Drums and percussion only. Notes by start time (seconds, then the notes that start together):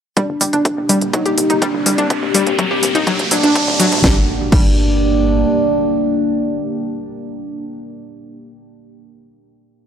0.17 kick, closed hi-hat, mid tom
0.41 open hi-hat
0.53 closed hi-hat
0.65 kick, closed hi-hat
0.89 open hi-hat, mid tom
1.01 closed hi-hat
1.13 kick, closed hi-hat, mid tom
1.26 closed hi-hat
1.38 open hi-hat
1.50 closed hi-hat, mid tom
1.62 kick, closed hi-hat
1.86 open hi-hat, mid tom
1.98 closed hi-hat
2.10 kick, closed hi-hat, mid tom
2.34 open hi-hat, mid tom
2.47 closed hi-hat
2.59 kick, closed hi-hat, mid tom
2.83 open hi-hat, mid tom
2.95 closed hi-hat
3.07 kick, closed hi-hat, mid tom
3.19 closed hi-hat, mid tom
3.31 open hi-hat, mid tom
3.43 closed hi-hat, mid tom
3.55 kick, closed hi-hat, mid tom
3.62 mid tom
3.68 mid tom
3.74 mid tom
3.80 open hi-hat, mid tom
3.86 mid tom
3.92 closed hi-hat, mid tom
3.98 mid tom
4.04 kick, snare
4.52 kick, crash